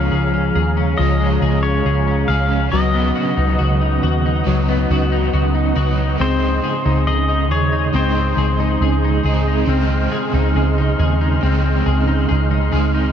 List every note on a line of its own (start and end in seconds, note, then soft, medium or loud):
0.00 0.96 C#3 medium
0.00 0.97 F3 medium
0.00 0.98 F3 medium
0.00 0.99 G#3 medium
0.00 1.19 G#3 medium
0.00 0.33 C#4 medium
0.00 1.01 C#4 medium
0.00 0.10 G#4 medium
0.00 2.69 G#4 medium
0.00 2.69 C#5 medium
0.00 0.97 F5 loud
0.00 2.70 F5 medium
0.00 2.68 A#5 medium
0.12 0.50 C#2 loud
0.12 0.54 G#4 medium
0.34 0.76 C#4 medium
0.56 0.94 D#2 loud
0.56 1.41 G#4 medium
0.77 1.63 C#4 medium
0.97 1.37 C#2 loud
0.97 2.28 C#3 medium
0.97 2.72 F3 medium
0.97 2.29 F3 medium
0.97 2.29 G#3 medium
0.97 1.65 D#5 loud
1.02 2.27 C#4 medium
1.20 2.81 G#3 medium
1.42 1.80 C#2 medium
1.42 1.85 G#4 medium
1.63 2.06 C#4 medium
1.63 2.30 C#5 loud
1.85 2.24 C#2 loud
1.85 2.28 G#4 medium
2.08 2.50 C#4 medium
2.28 2.67 C#2 medium
2.28 2.73 G#3 medium
2.28 2.72 C#4 medium
2.28 2.82 G#4 medium
2.28 2.71 F5 loud
2.33 2.72 F3 soft
2.51 2.81 C#4 medium
2.69 3.11 C#2 loud
2.69 4.43 C#3 medium
2.69 4.45 F#3 medium
2.69 4.46 F#3 medium
2.69 6.17 B4 medium
2.69 4.42 D#5 loud
2.69 6.17 F#5 medium
2.73 4.47 B3 medium
2.73 4.49 D#4 medium
2.73 6.17 D#5 medium
2.73 9.65 D#6 medium
2.94 4.68 B3 medium
3.15 3.57 F#4 medium
3.37 3.57 C#2 loud
3.37 3.81 D#4 medium
3.59 3.98 C#2 loud
3.59 4.02 F#4 medium
3.81 4.25 D#4 medium
4.03 4.41 D#2 medium
4.03 4.90 F#4 medium
4.26 5.12 D#4 medium
4.44 4.85 C#2 medium
4.44 5.76 C#3 medium
4.44 5.77 F#3 medium
4.44 6.29 F#3 medium
4.44 5.77 B3 medium
4.50 5.75 D#4 medium
4.69 6.19 B3 medium
4.90 5.28 C#2 loud
4.90 5.32 F#4 medium
5.12 5.54 D#4 medium
5.33 5.72 C#2 loud
5.33 5.75 F#4 medium
5.55 5.97 D#4 medium
5.75 6.15 C#2 loud
5.75 6.21 B3 medium
5.75 6.20 D#4 medium
5.75 6.29 F#4 medium
5.81 6.21 F#3 medium
5.98 6.85 D#4 medium
6.18 6.58 C#2 loud
6.18 7.92 C#3 medium
6.18 7.94 G#3 medium
6.18 7.94 C4 loud
6.18 13.12 G#4 medium
6.18 7.04 C5 loud
6.18 13.12 D#5 medium
6.18 13.12 C6 medium
6.26 7.97 D#4 medium
6.64 7.07 G#4 medium
6.86 7.05 C#2 loud
6.86 7.28 D#4 medium
7.07 7.51 C#2 loud
7.07 7.51 G#4 medium
7.07 7.51 D#5 loud
7.29 7.71 D#4 medium
7.51 7.89 D#2 loud
7.51 8.38 G#4 medium
7.51 7.95 C#5 loud
7.72 8.59 D#4 medium
7.93 8.32 C#2 loud
7.93 9.24 C#3 medium
7.93 9.28 G#3 medium
7.93 8.15 C4 medium
7.93 9.26 C4 medium
7.93 12.26 C5 loud
7.98 9.22 D#4 medium
8.16 9.68 C4 medium
8.37 8.76 C#2 medium
8.37 8.82 G#4 medium
8.60 9.03 D#4 medium
8.81 9.19 C#2 loud
8.81 9.25 G#4 medium
9.04 9.46 D#4 medium
9.23 9.63 C#2 loud
9.23 9.69 C4 medium
9.23 9.67 D#4 medium
9.23 10.11 G#4 medium
9.29 9.67 G#3 medium
9.48 10.33 D#4 medium
9.65 10.06 C#2 loud
9.65 11.40 C#3 loud
9.65 11.42 G#3 medium
9.65 9.90 C4 medium
9.65 13.12 F6 medium
9.71 11.44 C4 loud
9.71 11.45 D#4 loud
9.90 11.42 C4 medium
10.12 10.56 G#4 medium
10.34 10.53 C#2 loud
10.34 10.77 D#4 medium
10.55 10.93 C#2 loud
10.55 10.99 G#4 medium
10.78 11.20 D#4 medium
10.99 11.37 D#2 loud
10.99 11.86 G#4 medium
11.21 12.06 D#4 medium
11.41 11.81 C#2 loud
11.41 12.72 C#3 medium
11.41 12.76 G#3 medium
11.41 11.64 C4 medium
11.41 12.74 C4 medium
11.46 12.70 D#4 medium
11.64 13.12 C4 medium
11.86 12.24 C#2 loud
11.86 12.28 G#4 medium
12.07 12.50 D#4 medium
12.29 12.68 C#2 loud
12.29 12.72 G#4 medium
12.51 12.93 D#4 medium
12.71 13.11 C#2 loud
12.71 13.12 C4 medium
12.71 13.12 D#4 medium
12.71 13.12 G#4 medium
12.77 13.12 G#3 medium
12.94 13.12 D#4 medium